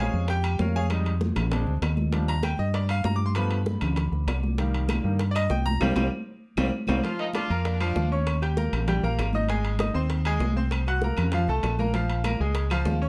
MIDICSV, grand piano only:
0, 0, Header, 1, 2, 480
1, 0, Start_track
1, 0, Tempo, 306435
1, 1416, Time_signature, 4, 2, 24, 8
1, 20501, End_track
2, 0, Start_track
2, 0, Title_t, "Grand piano"
2, 0, Program_c, 0, 0
2, 0, Note_on_c, 0, 56, 58
2, 0, Note_on_c, 0, 61, 56
2, 0, Note_on_c, 0, 68, 72
2, 0, Note_on_c, 0, 72, 43
2, 0, Note_on_c, 0, 73, 60
2, 0, Note_on_c, 0, 77, 70
2, 0, Note_on_c, 0, 80, 89
2, 425, Note_off_c, 0, 56, 0
2, 427, Note_off_c, 0, 72, 0
2, 429, Note_off_c, 0, 80, 0
2, 431, Note_off_c, 0, 68, 0
2, 433, Note_off_c, 0, 73, 0
2, 434, Note_off_c, 0, 61, 0
2, 434, Note_off_c, 0, 77, 0
2, 467, Note_on_c, 0, 79, 97
2, 478, Note_on_c, 0, 67, 77
2, 908, Note_off_c, 0, 79, 0
2, 914, Note_off_c, 0, 67, 0
2, 955, Note_on_c, 0, 77, 68
2, 958, Note_on_c, 0, 65, 52
2, 959, Note_on_c, 0, 73, 54
2, 962, Note_on_c, 0, 70, 55
2, 1170, Note_off_c, 0, 77, 0
2, 1171, Note_off_c, 0, 73, 0
2, 1180, Note_off_c, 0, 65, 0
2, 1182, Note_off_c, 0, 70, 0
2, 1190, Note_on_c, 0, 80, 100
2, 1193, Note_on_c, 0, 68, 78
2, 1194, Note_on_c, 0, 77, 78
2, 1195, Note_on_c, 0, 73, 67
2, 1330, Note_off_c, 0, 80, 0
2, 1332, Note_off_c, 0, 68, 0
2, 1332, Note_off_c, 0, 77, 0
2, 1333, Note_off_c, 0, 73, 0
2, 1421, Note_on_c, 0, 55, 58
2, 1430, Note_on_c, 0, 56, 54
2, 1443, Note_on_c, 0, 63, 69
2, 1738, Note_off_c, 0, 55, 0
2, 1743, Note_off_c, 0, 56, 0
2, 1749, Note_off_c, 0, 63, 0
2, 2369, Note_on_c, 0, 56, 55
2, 2384, Note_on_c, 0, 60, 53
2, 2392, Note_on_c, 0, 62, 66
2, 2692, Note_off_c, 0, 56, 0
2, 2700, Note_off_c, 0, 60, 0
2, 2704, Note_off_c, 0, 62, 0
2, 3324, Note_on_c, 0, 53, 55
2, 3341, Note_on_c, 0, 55, 51
2, 3346, Note_on_c, 0, 62, 60
2, 3577, Note_on_c, 0, 82, 102
2, 3650, Note_off_c, 0, 53, 0
2, 3659, Note_off_c, 0, 55, 0
2, 3662, Note_off_c, 0, 62, 0
2, 3810, Note_off_c, 0, 82, 0
2, 3822, Note_on_c, 0, 79, 94
2, 4053, Note_off_c, 0, 79, 0
2, 4057, Note_on_c, 0, 75, 87
2, 4291, Note_off_c, 0, 75, 0
2, 4304, Note_on_c, 0, 74, 81
2, 4535, Note_off_c, 0, 74, 0
2, 4549, Note_on_c, 0, 77, 101
2, 4778, Note_off_c, 0, 77, 0
2, 4781, Note_on_c, 0, 82, 96
2, 4936, Note_off_c, 0, 82, 0
2, 4948, Note_on_c, 0, 86, 96
2, 5099, Note_off_c, 0, 86, 0
2, 5103, Note_on_c, 0, 84, 81
2, 5257, Note_off_c, 0, 84, 0
2, 5260, Note_on_c, 0, 53, 63
2, 5265, Note_on_c, 0, 57, 56
2, 5265, Note_on_c, 0, 83, 90
2, 5280, Note_on_c, 0, 59, 62
2, 5580, Note_off_c, 0, 53, 0
2, 5582, Note_off_c, 0, 57, 0
2, 5591, Note_off_c, 0, 59, 0
2, 6643, Note_off_c, 0, 83, 0
2, 7188, Note_on_c, 0, 51, 60
2, 7196, Note_on_c, 0, 55, 51
2, 7203, Note_on_c, 0, 58, 59
2, 7871, Note_off_c, 0, 51, 0
2, 7875, Note_off_c, 0, 55, 0
2, 7879, Note_off_c, 0, 58, 0
2, 7895, Note_on_c, 0, 51, 50
2, 7900, Note_on_c, 0, 55, 44
2, 7903, Note_on_c, 0, 58, 53
2, 8116, Note_off_c, 0, 51, 0
2, 8119, Note_off_c, 0, 55, 0
2, 8120, Note_off_c, 0, 58, 0
2, 8320, Note_on_c, 0, 74, 81
2, 8357, Note_off_c, 0, 74, 0
2, 8389, Note_on_c, 0, 75, 111
2, 8621, Note_off_c, 0, 75, 0
2, 8625, Note_on_c, 0, 79, 88
2, 8859, Note_off_c, 0, 79, 0
2, 8860, Note_on_c, 0, 82, 113
2, 9097, Note_off_c, 0, 82, 0
2, 9113, Note_on_c, 0, 55, 111
2, 9113, Note_on_c, 0, 58, 100
2, 9114, Note_on_c, 0, 60, 91
2, 9264, Note_off_c, 0, 55, 0
2, 9265, Note_off_c, 0, 58, 0
2, 9265, Note_off_c, 0, 60, 0
2, 9330, Note_on_c, 0, 55, 98
2, 9332, Note_on_c, 0, 60, 92
2, 9334, Note_on_c, 0, 58, 85
2, 9491, Note_off_c, 0, 55, 0
2, 9492, Note_off_c, 0, 60, 0
2, 9493, Note_off_c, 0, 58, 0
2, 10302, Note_on_c, 0, 55, 104
2, 10304, Note_on_c, 0, 58, 98
2, 10305, Note_on_c, 0, 60, 104
2, 10458, Note_off_c, 0, 55, 0
2, 10459, Note_off_c, 0, 58, 0
2, 10460, Note_off_c, 0, 60, 0
2, 10781, Note_on_c, 0, 58, 91
2, 10784, Note_on_c, 0, 55, 93
2, 10784, Note_on_c, 0, 60, 96
2, 10938, Note_off_c, 0, 58, 0
2, 10939, Note_off_c, 0, 55, 0
2, 10940, Note_off_c, 0, 60, 0
2, 11019, Note_on_c, 0, 53, 86
2, 11024, Note_on_c, 0, 65, 80
2, 11030, Note_on_c, 0, 77, 84
2, 11417, Note_off_c, 0, 53, 0
2, 11420, Note_off_c, 0, 65, 0
2, 11423, Note_off_c, 0, 77, 0
2, 11513, Note_on_c, 0, 62, 67
2, 11514, Note_on_c, 0, 74, 71
2, 11516, Note_on_c, 0, 86, 73
2, 11708, Note_off_c, 0, 62, 0
2, 11709, Note_off_c, 0, 74, 0
2, 11710, Note_off_c, 0, 86, 0
2, 11742, Note_on_c, 0, 58, 81
2, 11750, Note_on_c, 0, 70, 74
2, 11753, Note_on_c, 0, 82, 67
2, 12139, Note_off_c, 0, 58, 0
2, 12143, Note_off_c, 0, 70, 0
2, 12145, Note_off_c, 0, 82, 0
2, 12229, Note_on_c, 0, 53, 93
2, 12235, Note_on_c, 0, 65, 97
2, 12235, Note_on_c, 0, 77, 90
2, 12623, Note_off_c, 0, 53, 0
2, 12626, Note_off_c, 0, 65, 0
2, 12626, Note_off_c, 0, 77, 0
2, 12717, Note_on_c, 0, 61, 77
2, 12718, Note_on_c, 0, 73, 74
2, 12725, Note_on_c, 0, 85, 73
2, 13107, Note_off_c, 0, 61, 0
2, 13108, Note_off_c, 0, 73, 0
2, 13112, Note_off_c, 0, 85, 0
2, 13190, Note_on_c, 0, 67, 77
2, 13194, Note_on_c, 0, 79, 71
2, 13198, Note_on_c, 0, 91, 66
2, 13386, Note_off_c, 0, 67, 0
2, 13389, Note_off_c, 0, 79, 0
2, 13391, Note_off_c, 0, 91, 0
2, 13427, Note_on_c, 0, 58, 62
2, 13434, Note_on_c, 0, 70, 69
2, 13437, Note_on_c, 0, 82, 69
2, 13821, Note_off_c, 0, 58, 0
2, 13826, Note_off_c, 0, 70, 0
2, 13827, Note_off_c, 0, 82, 0
2, 13911, Note_on_c, 0, 55, 78
2, 13913, Note_on_c, 0, 67, 83
2, 13918, Note_on_c, 0, 79, 77
2, 14107, Note_off_c, 0, 55, 0
2, 14108, Note_off_c, 0, 67, 0
2, 14111, Note_off_c, 0, 79, 0
2, 14151, Note_on_c, 0, 58, 89
2, 14156, Note_on_c, 0, 70, 75
2, 14163, Note_on_c, 0, 82, 79
2, 14543, Note_off_c, 0, 58, 0
2, 14546, Note_off_c, 0, 70, 0
2, 14550, Note_off_c, 0, 82, 0
2, 14638, Note_on_c, 0, 63, 75
2, 14643, Note_on_c, 0, 75, 82
2, 14644, Note_on_c, 0, 87, 74
2, 14831, Note_off_c, 0, 63, 0
2, 14833, Note_off_c, 0, 75, 0
2, 14834, Note_off_c, 0, 87, 0
2, 14869, Note_on_c, 0, 56, 81
2, 14874, Note_on_c, 0, 68, 76
2, 14880, Note_on_c, 0, 80, 82
2, 15261, Note_off_c, 0, 56, 0
2, 15264, Note_off_c, 0, 68, 0
2, 15268, Note_off_c, 0, 80, 0
2, 15341, Note_on_c, 0, 63, 67
2, 15348, Note_on_c, 0, 75, 68
2, 15353, Note_on_c, 0, 87, 73
2, 15540, Note_off_c, 0, 63, 0
2, 15544, Note_off_c, 0, 75, 0
2, 15547, Note_off_c, 0, 87, 0
2, 15574, Note_on_c, 0, 60, 82
2, 15580, Note_on_c, 0, 84, 82
2, 15581, Note_on_c, 0, 72, 81
2, 15972, Note_off_c, 0, 60, 0
2, 15975, Note_off_c, 0, 84, 0
2, 15976, Note_off_c, 0, 72, 0
2, 16073, Note_on_c, 0, 56, 88
2, 16077, Note_on_c, 0, 68, 93
2, 16080, Note_on_c, 0, 80, 90
2, 16463, Note_off_c, 0, 56, 0
2, 16465, Note_off_c, 0, 68, 0
2, 16467, Note_off_c, 0, 80, 0
2, 16547, Note_on_c, 0, 60, 72
2, 16551, Note_on_c, 0, 72, 76
2, 16554, Note_on_c, 0, 84, 75
2, 16938, Note_off_c, 0, 60, 0
2, 16941, Note_off_c, 0, 72, 0
2, 16943, Note_off_c, 0, 84, 0
2, 17032, Note_on_c, 0, 66, 69
2, 17041, Note_on_c, 0, 78, 75
2, 17044, Note_on_c, 0, 90, 65
2, 17225, Note_off_c, 0, 66, 0
2, 17230, Note_off_c, 0, 78, 0
2, 17232, Note_off_c, 0, 90, 0
2, 17285, Note_on_c, 0, 58, 62
2, 17288, Note_on_c, 0, 70, 66
2, 17297, Note_on_c, 0, 82, 70
2, 17668, Note_off_c, 0, 58, 0
2, 17670, Note_off_c, 0, 70, 0
2, 17675, Note_off_c, 0, 82, 0
2, 17758, Note_on_c, 0, 53, 87
2, 17764, Note_on_c, 0, 65, 74
2, 17768, Note_on_c, 0, 77, 84
2, 17947, Note_off_c, 0, 53, 0
2, 17951, Note_off_c, 0, 65, 0
2, 17953, Note_off_c, 0, 77, 0
2, 17994, Note_on_c, 0, 57, 86
2, 17999, Note_on_c, 0, 69, 84
2, 18006, Note_on_c, 0, 81, 76
2, 18381, Note_off_c, 0, 57, 0
2, 18384, Note_off_c, 0, 69, 0
2, 18388, Note_off_c, 0, 81, 0
2, 18469, Note_on_c, 0, 58, 83
2, 18475, Note_on_c, 0, 70, 73
2, 18480, Note_on_c, 0, 82, 75
2, 18661, Note_off_c, 0, 58, 0
2, 18665, Note_off_c, 0, 70, 0
2, 18668, Note_off_c, 0, 82, 0
2, 18715, Note_on_c, 0, 53, 77
2, 18728, Note_on_c, 0, 65, 77
2, 18728, Note_on_c, 0, 77, 81
2, 19101, Note_off_c, 0, 53, 0
2, 19109, Note_off_c, 0, 65, 0
2, 19109, Note_off_c, 0, 77, 0
2, 19199, Note_on_c, 0, 58, 69
2, 19204, Note_on_c, 0, 82, 68
2, 19208, Note_on_c, 0, 70, 73
2, 19387, Note_off_c, 0, 58, 0
2, 19390, Note_off_c, 0, 82, 0
2, 19392, Note_off_c, 0, 70, 0
2, 19429, Note_on_c, 0, 56, 73
2, 19436, Note_on_c, 0, 68, 71
2, 19438, Note_on_c, 0, 80, 65
2, 19817, Note_off_c, 0, 56, 0
2, 19821, Note_off_c, 0, 68, 0
2, 19823, Note_off_c, 0, 80, 0
2, 19909, Note_on_c, 0, 53, 90
2, 19918, Note_on_c, 0, 65, 89
2, 19921, Note_on_c, 0, 77, 90
2, 20297, Note_off_c, 0, 53, 0
2, 20302, Note_off_c, 0, 65, 0
2, 20304, Note_off_c, 0, 77, 0
2, 20389, Note_on_c, 0, 61, 82
2, 20394, Note_on_c, 0, 73, 77
2, 20402, Note_on_c, 0, 85, 69
2, 20501, Note_off_c, 0, 61, 0
2, 20501, Note_off_c, 0, 73, 0
2, 20501, Note_off_c, 0, 85, 0
2, 20501, End_track
0, 0, End_of_file